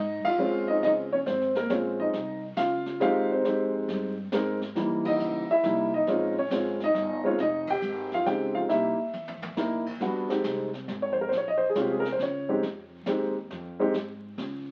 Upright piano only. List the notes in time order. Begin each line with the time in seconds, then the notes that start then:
Already playing: D#4 D#5
0.25 F4 F5
0.39 G#3 C4 C#4 F4
0.68 D#4 D#5
0.83 D#4 D#5
1.12 C#4 C#5
1.27 C4 C5
1.57 A#3 A#4
1.70 G#3 C4 C#4 F4 C#5
2.00 D#4 D#5
2.57 F4 F5
3.00 G#3 C4 D#4 F4 G4 F5
3.32 C4 C5
3.44 G#3 C4 D#4 G4
4.32 G#3 C4 D#4 A#4
4.75 E3 G3 A#3 D#4
5.06 D#4 D#5
5.51 E4 E5
5.64 G3 A#3 D#4 E4
5.94 D#4 D#5
6.08 G#3 C4 C#4 F4
6.39 C#4 C#5
6.51 G#3 C4 C#4 F4
6.84 D#4 D#5
7.24 G#3 C4 C#4 D#4 F4 C#5
7.40 D#4 D#5
7.70 G4 G5
8.14 F4 F5
8.26 G#3 C4 D#4 G4 G5
8.55 F4 F5
8.69 A#3 D#4 E4 G4 E5
9.57 A#3 D#4 E4 A#4
10.00 G3 B3 D4 F#4
10.29 G#3 C4 D#4 G4
11.02 C#5
11.13 C5
11.21 A#4
11.29 C5
11.37 C#5
11.48 D#5
11.58 C5
11.70 G#4
11.75 G#3 C4 C#4 F4
11.81 G4
11.91 G#4
12.00 A#4
12.12 C5
12.22 C#5
12.49 G#3 C4 D#4 G4
13.07 G#3 C4 D#4 G4
13.79 G#3 C4 D#4 G4